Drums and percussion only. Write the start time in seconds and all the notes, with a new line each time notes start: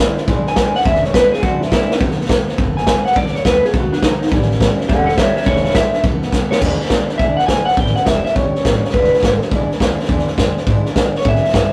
0.17 snare
0.27 kick, snare
0.47 snare
0.56 kick, snare, hi-hat pedal
0.75 snare
0.81 snare
0.85 kick, snare
0.95 snare
1.04 snare
1.14 kick, snare, hi-hat pedal
1.33 snare
1.43 kick, snare
1.62 snare
1.72 kick, snare, hi-hat pedal
1.91 snare
2.00 kick, snare
2.11 snare
2.20 snare
2.25 snare
2.29 kick, snare, hi-hat pedal
2.48 snare
2.58 kick, snare
2.77 snare
2.87 kick, snare, hi-hat pedal
3.06 snare
3.11 snare
3.16 kick, snare
3.26 snare
3.35 snare
3.45 kick, snare, hi-hat pedal
3.64 snare
3.73 kick, snare
3.93 snare
4.03 kick, snare, hi-hat pedal
4.22 snare
4.27 snare
4.32 kick, snare
4.42 snare
4.51 snare
4.61 kick, snare, hi-hat pedal
4.80 snare
4.89 kick, snare
5.08 snare
5.18 kick, snare, hi-hat pedal
5.36 snare
5.42 snare
5.46 kick, snare
5.56 snare
5.65 snare
5.70 snare
5.74 kick, snare, hi-hat pedal
5.93 snare
6.03 kick, snare
6.22 snare
6.32 kick, snare, hi-hat pedal
6.52 snare
6.62 kick, snare, crash
6.72 snare
6.80 snare
6.85 snare
6.90 kick, snare, hi-hat pedal
7.09 snare
7.19 kick, snare
7.39 snare
7.48 kick, snare, hi-hat pedal
7.68 snare
7.72 snare
7.77 kick, snare
7.86 snare
7.96 snare
8.06 kick, snare, hi-hat pedal
8.26 snare
8.36 kick, snare
8.55 snare
8.65 kick, snare, hi-hat pedal
8.84 snare
8.89 snare
8.94 kick, snare
9.04 snare
9.13 snare
9.18 snare
9.23 kick, snare, hi-hat pedal
9.42 snare
9.51 kick, snare
9.71 snare
9.80 kick, snare, hi-hat pedal
9.99 snare
10.04 snare
10.09 kick, snare
10.19 snare
10.27 snare
10.38 kick, snare, hi-hat pedal
10.57 snare
10.67 kick, snare
10.85 snare
10.96 kick, snare, hi-hat pedal
11.15 snare
11.21 snare
11.25 kick, snare
11.35 snare
11.44 snare
11.49 snare
11.54 kick, snare, hi-hat pedal